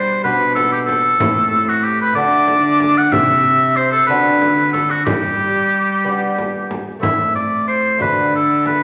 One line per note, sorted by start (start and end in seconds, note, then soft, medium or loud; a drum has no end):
0.00 0.20 B2 soft
0.00 0.20 G3 soft
0.00 0.25 G3 medium
0.00 0.20 D4 soft
0.00 0.23 C5 medium
0.24 1.19 B2 medium
0.24 1.16 B2 medium
0.24 1.16 B3 soft
0.24 1.16 D4 soft
0.24 0.54 B4 medium
0.55 0.71 A4 medium
0.55 frame drum medium
0.72 0.79 G4 medium
0.85 1.70 A4 medium
0.85 frame drum medium
1.19 2.17 A2 medium
1.19 2.12 A2 medium
1.19 2.12 A3 soft
1.19 2.12 C4 medium
1.19 2.12 E4 medium
1.19 frame drum medium
1.69 1.85 F#4 medium
1.84 2.00 G4 medium
2.01 2.14 B4 medium
2.15 3.10 D3 medium
2.15 3.08 D3 medium
2.15 3.08 A3 medium
2.15 3.08 D4 medium
2.15 3.09 F#4 medium
2.15 2.99 D5 loud
2.48 frame drum medium
2.80 frame drum medium
2.97 3.13 F#5 loud
3.11 4.06 C3 medium
3.11 4.05 C3 medium
3.11 4.05 C4 medium
3.11 4.05 G4 medium
3.11 3.78 E5 loud
3.11 frame drum medium
3.76 3.91 C5 medium
3.92 4.06 A4 loud
4.06 5.08 D3 medium
4.06 5.02 D3 medium
4.06 5.02 C4 medium
4.06 5.03 D4 medium
4.06 5.03 F#4 medium
4.06 4.71 B4 loud
4.42 frame drum medium
4.73 4.92 A4 medium
4.73 frame drum medium
4.90 5.04 F#4 medium
5.05 6.79 G3 medium
5.05 6.83 G3 medium
5.05 6.66 G4 medium
5.05 frame drum medium
6.04 6.99 B3 soft
6.04 6.99 D4 soft
6.04 6.99 G4 medium
6.38 frame drum soft
6.71 frame drum medium
6.99 8.03 A2 medium
6.99 7.96 A2 soft
6.99 7.95 A3 soft
6.99 7.96 C4 soft
6.99 7.97 E4 soft
6.99 7.33 E5 medium
6.99 frame drum medium
7.35 7.67 D5 medium
7.67 7.99 C5 medium
7.97 8.83 D3 medium
7.97 8.83 A3 soft
7.97 8.83 D4 soft
7.97 8.83 F#4 soft
7.97 8.32 B4 medium
7.97 frame drum soft
8.01 8.83 D3 soft
8.35 8.65 A4 medium
8.66 8.83 B4 medium
8.66 frame drum medium